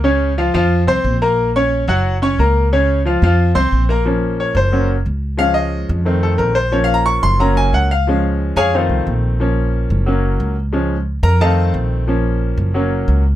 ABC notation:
X:1
M:4/4
L:1/8
Q:1/4=180
K:Bbm
V:1 name="Grand piano"
[D,Dd]2 [F,Ff] [F,Ff]2 [Ccc']2 [B,Bb]- | [B,Bb] [Ddd']2 [G,Gg]2 [Ddd'] [B,Bb]2 | [D,Dd]2 [F,Ff] [F,Ff]2 [Ccc']2 [B,Bb] | z2 d c2 z3 |
f e2 z2 =A B c | (3d f b d' c' b a g f- | f z2 [Adfa] [F=Acf]2 z2 | z8 |
z3 [Bb] [=Aef=a]2 z2 | z8 |]
V:2 name="Grand piano"
z8 | z8 | z8 | [F,B,D]4 [G,B,D] z3 |
[F,A,D]4 [E,=A,C]3 z | [F,B,D]4 [G,B,D]3 z | [F,A,D]4 [E,=A,C]4 | [F,B,D]4 [G,B,D]3 z |
[F,A,D] z3 [E,=A,C]4 | [F,B,D]4 [G,B,D]3 z |]
V:3 name="Upright bass" clef=bass
D,,3 F,,2 C,, B,,,2- | B,,,3 G,,,3 D,,2- | D,,3 F,,2 C,, B,,,2- | B,,,3 G,,,3 D,,2- |
D,,3 F,,3 B,,,2- | B,,,3 G,,,3 D,,2- | D,,3 F,,2 C,, B,,,2- | B,,,3 G,,,3 D,,2- |
D,,3 F,,3 B,,,2- | B,,,3 G,,,3 D,,2 |]